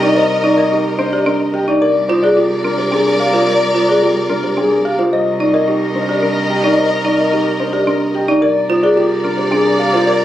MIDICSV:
0, 0, Header, 1, 5, 480
1, 0, Start_track
1, 0, Key_signature, -3, "minor"
1, 0, Tempo, 550459
1, 143, Time_signature, 3, 2, 24, 8
1, 8935, End_track
2, 0, Start_track
2, 0, Title_t, "Grand piano"
2, 0, Program_c, 0, 0
2, 25, Note_on_c, 0, 74, 81
2, 140, Note_on_c, 0, 75, 109
2, 180, Note_off_c, 0, 74, 0
2, 298, Note_off_c, 0, 75, 0
2, 386, Note_on_c, 0, 74, 85
2, 495, Note_on_c, 0, 75, 94
2, 540, Note_off_c, 0, 74, 0
2, 627, Note_on_c, 0, 67, 75
2, 657, Note_off_c, 0, 75, 0
2, 781, Note_off_c, 0, 67, 0
2, 861, Note_on_c, 0, 72, 95
2, 979, Note_on_c, 0, 74, 72
2, 1018, Note_off_c, 0, 72, 0
2, 1100, Note_on_c, 0, 70, 77
2, 1138, Note_off_c, 0, 74, 0
2, 1258, Note_off_c, 0, 70, 0
2, 1347, Note_on_c, 0, 79, 75
2, 1471, Note_on_c, 0, 74, 81
2, 1501, Note_off_c, 0, 79, 0
2, 1571, Note_off_c, 0, 74, 0
2, 1584, Note_on_c, 0, 74, 91
2, 1740, Note_off_c, 0, 74, 0
2, 1819, Note_on_c, 0, 72, 77
2, 1940, Note_on_c, 0, 74, 88
2, 1978, Note_off_c, 0, 72, 0
2, 2061, Note_on_c, 0, 67, 66
2, 2098, Note_off_c, 0, 74, 0
2, 2219, Note_off_c, 0, 67, 0
2, 2300, Note_on_c, 0, 70, 88
2, 2424, Note_on_c, 0, 72, 67
2, 2458, Note_off_c, 0, 70, 0
2, 2540, Note_on_c, 0, 68, 71
2, 2580, Note_off_c, 0, 72, 0
2, 2698, Note_off_c, 0, 68, 0
2, 2788, Note_on_c, 0, 77, 76
2, 2907, Note_on_c, 0, 72, 75
2, 2941, Note_off_c, 0, 77, 0
2, 3025, Note_on_c, 0, 74, 80
2, 3061, Note_off_c, 0, 72, 0
2, 3180, Note_off_c, 0, 74, 0
2, 3266, Note_on_c, 0, 72, 69
2, 3392, Note_on_c, 0, 74, 87
2, 3420, Note_off_c, 0, 72, 0
2, 3507, Note_on_c, 0, 67, 70
2, 3542, Note_off_c, 0, 74, 0
2, 3661, Note_off_c, 0, 67, 0
2, 3745, Note_on_c, 0, 70, 86
2, 3867, Note_on_c, 0, 72, 57
2, 3900, Note_off_c, 0, 70, 0
2, 3991, Note_on_c, 0, 68, 70
2, 4021, Note_off_c, 0, 72, 0
2, 4142, Note_off_c, 0, 68, 0
2, 4228, Note_on_c, 0, 77, 69
2, 4349, Note_on_c, 0, 72, 70
2, 4381, Note_off_c, 0, 77, 0
2, 4469, Note_on_c, 0, 75, 76
2, 4501, Note_off_c, 0, 72, 0
2, 4621, Note_off_c, 0, 75, 0
2, 4709, Note_on_c, 0, 74, 67
2, 4825, Note_on_c, 0, 75, 79
2, 4861, Note_off_c, 0, 74, 0
2, 4952, Note_on_c, 0, 67, 63
2, 4980, Note_off_c, 0, 75, 0
2, 5102, Note_off_c, 0, 67, 0
2, 5193, Note_on_c, 0, 72, 72
2, 5312, Note_on_c, 0, 74, 58
2, 5343, Note_off_c, 0, 72, 0
2, 5426, Note_on_c, 0, 70, 67
2, 5462, Note_off_c, 0, 74, 0
2, 5580, Note_off_c, 0, 70, 0
2, 5659, Note_on_c, 0, 79, 64
2, 5782, Note_on_c, 0, 74, 75
2, 5818, Note_off_c, 0, 79, 0
2, 5908, Note_on_c, 0, 75, 79
2, 5939, Note_off_c, 0, 74, 0
2, 6061, Note_off_c, 0, 75, 0
2, 6146, Note_on_c, 0, 74, 67
2, 6261, Note_on_c, 0, 75, 81
2, 6300, Note_off_c, 0, 74, 0
2, 6391, Note_on_c, 0, 67, 67
2, 6419, Note_off_c, 0, 75, 0
2, 6542, Note_off_c, 0, 67, 0
2, 6628, Note_on_c, 0, 72, 72
2, 6744, Note_on_c, 0, 74, 59
2, 6781, Note_off_c, 0, 72, 0
2, 6867, Note_on_c, 0, 70, 72
2, 6899, Note_off_c, 0, 74, 0
2, 7021, Note_off_c, 0, 70, 0
2, 7107, Note_on_c, 0, 79, 66
2, 7226, Note_on_c, 0, 74, 72
2, 7261, Note_off_c, 0, 79, 0
2, 7326, Note_off_c, 0, 74, 0
2, 7339, Note_on_c, 0, 74, 81
2, 7498, Note_off_c, 0, 74, 0
2, 7583, Note_on_c, 0, 72, 65
2, 7699, Note_on_c, 0, 74, 87
2, 7739, Note_off_c, 0, 72, 0
2, 7816, Note_on_c, 0, 67, 75
2, 7858, Note_off_c, 0, 74, 0
2, 7977, Note_off_c, 0, 67, 0
2, 8054, Note_on_c, 0, 70, 80
2, 8174, Note_on_c, 0, 72, 67
2, 8216, Note_off_c, 0, 70, 0
2, 8294, Note_on_c, 0, 68, 74
2, 8336, Note_off_c, 0, 72, 0
2, 8456, Note_off_c, 0, 68, 0
2, 8538, Note_on_c, 0, 77, 74
2, 8659, Note_on_c, 0, 72, 77
2, 8698, Note_off_c, 0, 77, 0
2, 8773, Note_on_c, 0, 74, 78
2, 8818, Note_off_c, 0, 72, 0
2, 8935, Note_off_c, 0, 74, 0
2, 8935, End_track
3, 0, Start_track
3, 0, Title_t, "Violin section"
3, 0, Program_c, 1, 48
3, 0, Note_on_c, 1, 70, 91
3, 0, Note_on_c, 1, 75, 86
3, 1426, Note_off_c, 1, 75, 0
3, 1428, Note_off_c, 1, 70, 0
3, 1579, Note_on_c, 1, 70, 93
3, 1579, Note_on_c, 1, 74, 89
3, 4306, Note_off_c, 1, 70, 0
3, 4306, Note_off_c, 1, 74, 0
3, 4473, Note_on_c, 1, 70, 81
3, 4476, Note_on_c, 1, 75, 72
3, 7193, Note_off_c, 1, 70, 0
3, 7195, Note_off_c, 1, 75, 0
3, 7334, Note_on_c, 1, 74, 79
3, 7338, Note_on_c, 1, 70, 72
3, 8935, Note_off_c, 1, 70, 0
3, 8935, Note_off_c, 1, 74, 0
3, 8935, End_track
4, 0, Start_track
4, 0, Title_t, "Marimba"
4, 0, Program_c, 2, 12
4, 25, Note_on_c, 2, 63, 102
4, 145, Note_on_c, 2, 72, 82
4, 180, Note_off_c, 2, 63, 0
4, 300, Note_off_c, 2, 72, 0
4, 381, Note_on_c, 2, 63, 112
4, 504, Note_on_c, 2, 70, 78
4, 539, Note_off_c, 2, 63, 0
4, 625, Note_on_c, 2, 63, 82
4, 659, Note_off_c, 2, 70, 0
4, 780, Note_off_c, 2, 63, 0
4, 861, Note_on_c, 2, 62, 88
4, 986, Note_on_c, 2, 67, 83
4, 1018, Note_off_c, 2, 62, 0
4, 1102, Note_on_c, 2, 62, 100
4, 1140, Note_off_c, 2, 67, 0
4, 1259, Note_off_c, 2, 62, 0
4, 1342, Note_on_c, 2, 67, 77
4, 1464, Note_on_c, 2, 63, 96
4, 1499, Note_off_c, 2, 67, 0
4, 1585, Note_on_c, 2, 70, 72
4, 1620, Note_off_c, 2, 63, 0
4, 1740, Note_off_c, 2, 70, 0
4, 1827, Note_on_c, 2, 65, 93
4, 1950, Note_on_c, 2, 68, 70
4, 1981, Note_off_c, 2, 65, 0
4, 2068, Note_on_c, 2, 65, 83
4, 2102, Note_off_c, 2, 68, 0
4, 2221, Note_off_c, 2, 65, 0
4, 2307, Note_on_c, 2, 62, 79
4, 2427, Note_on_c, 2, 67, 75
4, 2461, Note_off_c, 2, 62, 0
4, 2547, Note_on_c, 2, 62, 93
4, 2581, Note_off_c, 2, 67, 0
4, 2701, Note_off_c, 2, 62, 0
4, 2787, Note_on_c, 2, 67, 70
4, 2907, Note_on_c, 2, 65, 83
4, 2940, Note_off_c, 2, 67, 0
4, 3028, Note_on_c, 2, 70, 62
4, 3061, Note_off_c, 2, 65, 0
4, 3181, Note_off_c, 2, 70, 0
4, 3267, Note_on_c, 2, 65, 84
4, 3391, Note_on_c, 2, 68, 70
4, 3421, Note_off_c, 2, 65, 0
4, 3514, Note_on_c, 2, 65, 71
4, 3542, Note_off_c, 2, 68, 0
4, 3663, Note_off_c, 2, 65, 0
4, 3746, Note_on_c, 2, 62, 71
4, 3867, Note_on_c, 2, 67, 65
4, 3900, Note_off_c, 2, 62, 0
4, 3985, Note_on_c, 2, 62, 72
4, 4021, Note_off_c, 2, 67, 0
4, 4140, Note_off_c, 2, 62, 0
4, 4229, Note_on_c, 2, 67, 69
4, 4351, Note_on_c, 2, 65, 77
4, 4382, Note_off_c, 2, 67, 0
4, 4474, Note_on_c, 2, 72, 63
4, 4502, Note_off_c, 2, 65, 0
4, 4623, Note_off_c, 2, 72, 0
4, 4711, Note_on_c, 2, 63, 85
4, 4831, Note_on_c, 2, 70, 70
4, 4862, Note_off_c, 2, 63, 0
4, 4952, Note_on_c, 2, 63, 71
4, 4982, Note_off_c, 2, 70, 0
4, 5102, Note_off_c, 2, 63, 0
4, 5190, Note_on_c, 2, 62, 66
4, 5311, Note_on_c, 2, 67, 70
4, 5342, Note_off_c, 2, 62, 0
4, 5430, Note_on_c, 2, 62, 72
4, 5462, Note_off_c, 2, 67, 0
4, 5582, Note_off_c, 2, 62, 0
4, 5670, Note_on_c, 2, 67, 63
4, 5790, Note_on_c, 2, 63, 88
4, 5822, Note_off_c, 2, 67, 0
4, 5907, Note_on_c, 2, 72, 62
4, 5942, Note_off_c, 2, 63, 0
4, 6061, Note_off_c, 2, 72, 0
4, 6148, Note_on_c, 2, 63, 85
4, 6267, Note_on_c, 2, 70, 60
4, 6301, Note_off_c, 2, 63, 0
4, 6385, Note_on_c, 2, 63, 73
4, 6421, Note_off_c, 2, 70, 0
4, 6540, Note_off_c, 2, 63, 0
4, 6624, Note_on_c, 2, 62, 65
4, 6742, Note_on_c, 2, 67, 75
4, 6779, Note_off_c, 2, 62, 0
4, 6864, Note_on_c, 2, 62, 83
4, 6899, Note_off_c, 2, 67, 0
4, 7020, Note_off_c, 2, 62, 0
4, 7103, Note_on_c, 2, 67, 66
4, 7224, Note_on_c, 2, 63, 91
4, 7259, Note_off_c, 2, 67, 0
4, 7343, Note_on_c, 2, 70, 70
4, 7379, Note_off_c, 2, 63, 0
4, 7499, Note_off_c, 2, 70, 0
4, 7584, Note_on_c, 2, 65, 95
4, 7705, Note_on_c, 2, 68, 72
4, 7739, Note_off_c, 2, 65, 0
4, 7825, Note_on_c, 2, 65, 85
4, 7860, Note_off_c, 2, 68, 0
4, 7980, Note_off_c, 2, 65, 0
4, 8063, Note_on_c, 2, 62, 73
4, 8181, Note_on_c, 2, 67, 69
4, 8219, Note_off_c, 2, 62, 0
4, 8302, Note_on_c, 2, 62, 92
4, 8338, Note_off_c, 2, 67, 0
4, 8459, Note_off_c, 2, 62, 0
4, 8546, Note_on_c, 2, 67, 72
4, 8669, Note_on_c, 2, 65, 89
4, 8700, Note_off_c, 2, 67, 0
4, 8786, Note_on_c, 2, 70, 71
4, 8821, Note_off_c, 2, 65, 0
4, 8935, Note_off_c, 2, 70, 0
4, 8935, End_track
5, 0, Start_track
5, 0, Title_t, "Cello"
5, 0, Program_c, 3, 42
5, 0, Note_on_c, 3, 36, 87
5, 1452, Note_off_c, 3, 36, 0
5, 1589, Note_on_c, 3, 36, 68
5, 4335, Note_off_c, 3, 36, 0
5, 4472, Note_on_c, 3, 36, 69
5, 7217, Note_off_c, 3, 36, 0
5, 7341, Note_on_c, 3, 36, 65
5, 8935, Note_off_c, 3, 36, 0
5, 8935, End_track
0, 0, End_of_file